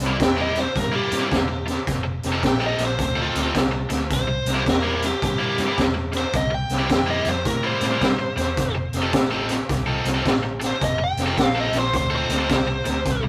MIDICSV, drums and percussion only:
0, 0, Header, 1, 2, 480
1, 0, Start_track
1, 0, Tempo, 559180
1, 1606, Time_signature, 4, 2, 24, 8
1, 11407, End_track
2, 0, Start_track
2, 0, Title_t, "Drums"
2, 11, Note_on_c, 9, 38, 29
2, 97, Note_off_c, 9, 38, 0
2, 170, Note_on_c, 9, 36, 80
2, 171, Note_on_c, 9, 42, 76
2, 183, Note_on_c, 9, 38, 109
2, 256, Note_off_c, 9, 36, 0
2, 257, Note_off_c, 9, 42, 0
2, 269, Note_off_c, 9, 38, 0
2, 474, Note_on_c, 9, 42, 47
2, 486, Note_on_c, 9, 38, 32
2, 560, Note_off_c, 9, 42, 0
2, 572, Note_off_c, 9, 38, 0
2, 650, Note_on_c, 9, 36, 74
2, 654, Note_on_c, 9, 42, 73
2, 666, Note_on_c, 9, 38, 33
2, 735, Note_off_c, 9, 36, 0
2, 740, Note_off_c, 9, 42, 0
2, 752, Note_off_c, 9, 38, 0
2, 957, Note_on_c, 9, 42, 57
2, 969, Note_on_c, 9, 38, 31
2, 1043, Note_off_c, 9, 42, 0
2, 1055, Note_off_c, 9, 38, 0
2, 1130, Note_on_c, 9, 36, 76
2, 1134, Note_on_c, 9, 42, 61
2, 1146, Note_on_c, 9, 38, 75
2, 1215, Note_off_c, 9, 36, 0
2, 1220, Note_off_c, 9, 42, 0
2, 1232, Note_off_c, 9, 38, 0
2, 1439, Note_on_c, 9, 42, 55
2, 1451, Note_on_c, 9, 38, 33
2, 1525, Note_off_c, 9, 42, 0
2, 1537, Note_off_c, 9, 38, 0
2, 1608, Note_on_c, 9, 36, 74
2, 1609, Note_on_c, 9, 42, 84
2, 1621, Note_on_c, 9, 38, 34
2, 1694, Note_off_c, 9, 36, 0
2, 1695, Note_off_c, 9, 42, 0
2, 1707, Note_off_c, 9, 38, 0
2, 1916, Note_on_c, 9, 42, 49
2, 1928, Note_on_c, 9, 38, 30
2, 2002, Note_off_c, 9, 42, 0
2, 2014, Note_off_c, 9, 38, 0
2, 2085, Note_on_c, 9, 36, 74
2, 2086, Note_on_c, 9, 42, 71
2, 2098, Note_on_c, 9, 38, 93
2, 2171, Note_off_c, 9, 36, 0
2, 2172, Note_off_c, 9, 42, 0
2, 2184, Note_off_c, 9, 38, 0
2, 2390, Note_on_c, 9, 42, 56
2, 2402, Note_on_c, 9, 38, 32
2, 2476, Note_off_c, 9, 42, 0
2, 2488, Note_off_c, 9, 38, 0
2, 2564, Note_on_c, 9, 42, 78
2, 2565, Note_on_c, 9, 36, 79
2, 2576, Note_on_c, 9, 38, 30
2, 2650, Note_off_c, 9, 42, 0
2, 2651, Note_off_c, 9, 36, 0
2, 2662, Note_off_c, 9, 38, 0
2, 2877, Note_on_c, 9, 42, 59
2, 2889, Note_on_c, 9, 38, 31
2, 2963, Note_off_c, 9, 42, 0
2, 2975, Note_off_c, 9, 38, 0
2, 3045, Note_on_c, 9, 36, 60
2, 3046, Note_on_c, 9, 42, 73
2, 3058, Note_on_c, 9, 38, 83
2, 3131, Note_off_c, 9, 36, 0
2, 3132, Note_off_c, 9, 42, 0
2, 3144, Note_off_c, 9, 38, 0
2, 3345, Note_on_c, 9, 42, 63
2, 3357, Note_on_c, 9, 38, 34
2, 3431, Note_off_c, 9, 42, 0
2, 3443, Note_off_c, 9, 38, 0
2, 3523, Note_on_c, 9, 42, 85
2, 3524, Note_on_c, 9, 36, 83
2, 3535, Note_on_c, 9, 38, 32
2, 3609, Note_off_c, 9, 42, 0
2, 3610, Note_off_c, 9, 36, 0
2, 3621, Note_off_c, 9, 38, 0
2, 3829, Note_on_c, 9, 42, 61
2, 3841, Note_on_c, 9, 38, 29
2, 3915, Note_off_c, 9, 42, 0
2, 3927, Note_off_c, 9, 38, 0
2, 4003, Note_on_c, 9, 36, 76
2, 4005, Note_on_c, 9, 42, 68
2, 4017, Note_on_c, 9, 38, 96
2, 4089, Note_off_c, 9, 36, 0
2, 4091, Note_off_c, 9, 42, 0
2, 4103, Note_off_c, 9, 38, 0
2, 4312, Note_on_c, 9, 42, 58
2, 4324, Note_on_c, 9, 38, 27
2, 4398, Note_off_c, 9, 42, 0
2, 4410, Note_off_c, 9, 38, 0
2, 4484, Note_on_c, 9, 36, 82
2, 4485, Note_on_c, 9, 42, 72
2, 4497, Note_on_c, 9, 38, 35
2, 4570, Note_off_c, 9, 36, 0
2, 4571, Note_off_c, 9, 42, 0
2, 4583, Note_off_c, 9, 38, 0
2, 4788, Note_on_c, 9, 42, 51
2, 4801, Note_on_c, 9, 38, 27
2, 4874, Note_off_c, 9, 42, 0
2, 4886, Note_off_c, 9, 38, 0
2, 4961, Note_on_c, 9, 36, 69
2, 4961, Note_on_c, 9, 42, 63
2, 4973, Note_on_c, 9, 38, 88
2, 5047, Note_off_c, 9, 36, 0
2, 5047, Note_off_c, 9, 42, 0
2, 5059, Note_off_c, 9, 38, 0
2, 5262, Note_on_c, 9, 42, 53
2, 5274, Note_on_c, 9, 38, 31
2, 5348, Note_off_c, 9, 42, 0
2, 5360, Note_off_c, 9, 38, 0
2, 5436, Note_on_c, 9, 42, 77
2, 5440, Note_on_c, 9, 36, 87
2, 5448, Note_on_c, 9, 38, 36
2, 5522, Note_off_c, 9, 42, 0
2, 5525, Note_off_c, 9, 36, 0
2, 5534, Note_off_c, 9, 38, 0
2, 5746, Note_on_c, 9, 42, 46
2, 5758, Note_on_c, 9, 38, 27
2, 5832, Note_off_c, 9, 42, 0
2, 5844, Note_off_c, 9, 38, 0
2, 5918, Note_on_c, 9, 42, 72
2, 5920, Note_on_c, 9, 36, 77
2, 5930, Note_on_c, 9, 38, 106
2, 6004, Note_off_c, 9, 42, 0
2, 6006, Note_off_c, 9, 36, 0
2, 6016, Note_off_c, 9, 38, 0
2, 6221, Note_on_c, 9, 42, 53
2, 6233, Note_on_c, 9, 38, 33
2, 6307, Note_off_c, 9, 42, 0
2, 6319, Note_off_c, 9, 38, 0
2, 6397, Note_on_c, 9, 42, 77
2, 6398, Note_on_c, 9, 36, 74
2, 6409, Note_on_c, 9, 38, 31
2, 6482, Note_off_c, 9, 42, 0
2, 6484, Note_off_c, 9, 36, 0
2, 6494, Note_off_c, 9, 38, 0
2, 6702, Note_on_c, 9, 42, 54
2, 6714, Note_on_c, 9, 38, 32
2, 6788, Note_off_c, 9, 42, 0
2, 6800, Note_off_c, 9, 38, 0
2, 6879, Note_on_c, 9, 42, 60
2, 6880, Note_on_c, 9, 36, 69
2, 6891, Note_on_c, 9, 38, 85
2, 6965, Note_off_c, 9, 36, 0
2, 6965, Note_off_c, 9, 42, 0
2, 6977, Note_off_c, 9, 38, 0
2, 7187, Note_on_c, 9, 42, 59
2, 7199, Note_on_c, 9, 38, 33
2, 7273, Note_off_c, 9, 42, 0
2, 7285, Note_off_c, 9, 38, 0
2, 7357, Note_on_c, 9, 42, 80
2, 7360, Note_on_c, 9, 36, 83
2, 7369, Note_on_c, 9, 38, 36
2, 7443, Note_off_c, 9, 42, 0
2, 7446, Note_off_c, 9, 36, 0
2, 7455, Note_off_c, 9, 38, 0
2, 7665, Note_on_c, 9, 42, 53
2, 7677, Note_on_c, 9, 38, 29
2, 7750, Note_off_c, 9, 42, 0
2, 7762, Note_off_c, 9, 38, 0
2, 7835, Note_on_c, 9, 42, 87
2, 7840, Note_on_c, 9, 36, 86
2, 7847, Note_on_c, 9, 38, 97
2, 7921, Note_off_c, 9, 42, 0
2, 7925, Note_off_c, 9, 36, 0
2, 7933, Note_off_c, 9, 38, 0
2, 8144, Note_on_c, 9, 42, 52
2, 8156, Note_on_c, 9, 38, 30
2, 8230, Note_off_c, 9, 42, 0
2, 8242, Note_off_c, 9, 38, 0
2, 8322, Note_on_c, 9, 36, 80
2, 8322, Note_on_c, 9, 42, 71
2, 8334, Note_on_c, 9, 38, 32
2, 8407, Note_off_c, 9, 36, 0
2, 8408, Note_off_c, 9, 42, 0
2, 8420, Note_off_c, 9, 38, 0
2, 8629, Note_on_c, 9, 42, 59
2, 8641, Note_on_c, 9, 38, 28
2, 8715, Note_off_c, 9, 42, 0
2, 8727, Note_off_c, 9, 38, 0
2, 8803, Note_on_c, 9, 36, 68
2, 8803, Note_on_c, 9, 42, 63
2, 8815, Note_on_c, 9, 38, 81
2, 8889, Note_off_c, 9, 36, 0
2, 8889, Note_off_c, 9, 42, 0
2, 8901, Note_off_c, 9, 38, 0
2, 9109, Note_on_c, 9, 42, 60
2, 9121, Note_on_c, 9, 38, 32
2, 9194, Note_off_c, 9, 42, 0
2, 9207, Note_off_c, 9, 38, 0
2, 9283, Note_on_c, 9, 36, 79
2, 9284, Note_on_c, 9, 42, 76
2, 9296, Note_on_c, 9, 38, 30
2, 9369, Note_off_c, 9, 36, 0
2, 9370, Note_off_c, 9, 42, 0
2, 9382, Note_off_c, 9, 38, 0
2, 9590, Note_on_c, 9, 42, 52
2, 9602, Note_on_c, 9, 38, 31
2, 9676, Note_off_c, 9, 42, 0
2, 9688, Note_off_c, 9, 38, 0
2, 9765, Note_on_c, 9, 36, 74
2, 9765, Note_on_c, 9, 42, 79
2, 9778, Note_on_c, 9, 38, 102
2, 9850, Note_off_c, 9, 36, 0
2, 9851, Note_off_c, 9, 42, 0
2, 9863, Note_off_c, 9, 38, 0
2, 10068, Note_on_c, 9, 42, 51
2, 10080, Note_on_c, 9, 38, 34
2, 10154, Note_off_c, 9, 42, 0
2, 10166, Note_off_c, 9, 38, 0
2, 10244, Note_on_c, 9, 42, 72
2, 10245, Note_on_c, 9, 36, 79
2, 10256, Note_on_c, 9, 38, 31
2, 10330, Note_off_c, 9, 42, 0
2, 10331, Note_off_c, 9, 36, 0
2, 10342, Note_off_c, 9, 38, 0
2, 10554, Note_on_c, 9, 42, 51
2, 10566, Note_on_c, 9, 38, 27
2, 10640, Note_off_c, 9, 42, 0
2, 10652, Note_off_c, 9, 38, 0
2, 10725, Note_on_c, 9, 42, 68
2, 10727, Note_on_c, 9, 36, 72
2, 10737, Note_on_c, 9, 38, 82
2, 10811, Note_off_c, 9, 42, 0
2, 10813, Note_off_c, 9, 36, 0
2, 10823, Note_off_c, 9, 38, 0
2, 11032, Note_on_c, 9, 42, 58
2, 11044, Note_on_c, 9, 38, 32
2, 11117, Note_off_c, 9, 42, 0
2, 11129, Note_off_c, 9, 38, 0
2, 11206, Note_on_c, 9, 42, 76
2, 11207, Note_on_c, 9, 36, 76
2, 11219, Note_on_c, 9, 38, 33
2, 11292, Note_off_c, 9, 42, 0
2, 11293, Note_off_c, 9, 36, 0
2, 11304, Note_off_c, 9, 38, 0
2, 11407, End_track
0, 0, End_of_file